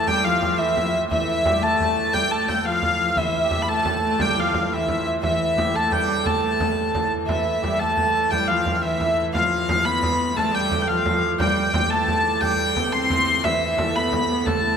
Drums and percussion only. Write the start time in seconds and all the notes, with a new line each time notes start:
0.08 frame drum
0.42 frame drum
0.77 frame drum
0.95 frame drum
1.11 frame drum
1.45 frame drum
1.80 frame drum
2.14 frame drum
2.32 frame drum
2.49 frame drum
2.65 frame drum
2.83 frame drum
3.00 frame drum
3.17 frame drum
3.51 frame drum
3.85 frame drum
4.03 frame drum
4.20 frame drum
4.54 frame drum
4.88 frame drum
5.06 frame drum
5.23 frame drum
5.58 frame drum
5.92 frame drum
6.09 frame drum
6.26 frame drum
6.60 frame drum
6.78 frame drum
6.95 frame drum
7.29 frame drum
7.64 frame drum
7.97 frame drum
8.15 frame drum
8.32 frame drum
8.66 frame drum
9.01 frame drum
9.18 frame drum
9.35 frame drum
9.69 frame drum
10.03 frame drum
10.21 frame drum
10.38 frame drum
10.72 frame drum
11.06 frame drum
11.23 frame drum
11.40 frame drum
11.74 frame drum
12.08 frame drum
12.25 frame drum
12.42 frame drum
12.77 frame drum
13.10 frame drum
13.28 frame drum
13.45 frame drum
13.78 frame drum
14.13 frame drum
14.30 frame drum
14.47 frame drum